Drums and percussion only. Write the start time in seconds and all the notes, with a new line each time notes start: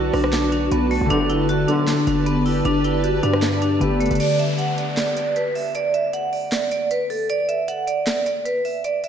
0.13 cross-stick, open hi-hat
0.24 cross-stick
0.33 snare, clap, closed hi-hat
0.52 closed hi-hat
0.72 closed hi-hat
0.91 open hi-hat
1.10 closed hi-hat
1.30 closed hi-hat
1.49 closed hi-hat
1.68 closed hi-hat
1.88 snare, clap, closed hi-hat
2.07 closed hi-hat
2.26 closed hi-hat
2.46 open hi-hat
2.65 closed hi-hat
2.84 closed hi-hat
3.04 closed hi-hat
3.23 closed hi-hat
3.33 cross-stick
3.42 snare, clap, closed hi-hat
3.62 closed hi-hat
3.81 closed hi-hat
4.01 closed hi-hat
4.06 closed hi-hat
4.11 closed hi-hat
4.15 closed hi-hat
4.20 closed hi-hat, crash
4.39 closed hi-hat
4.59 closed hi-hat
4.78 closed hi-hat
4.97 snare, clap, closed hi-hat
5.17 closed hi-hat
5.36 closed hi-hat
5.55 open hi-hat
5.75 closed hi-hat
5.94 closed hi-hat
6.13 closed hi-hat
6.33 open hi-hat
6.52 snare, clap, closed hi-hat
6.71 closed hi-hat
6.91 closed hi-hat
7.10 open hi-hat
7.30 closed hi-hat
7.49 closed hi-hat
7.68 closed hi-hat
7.88 closed hi-hat
8.07 snare, clap, closed hi-hat
8.26 closed hi-hat
8.46 closed hi-hat
8.65 open hi-hat
8.84 closed hi-hat
9.04 closed hi-hat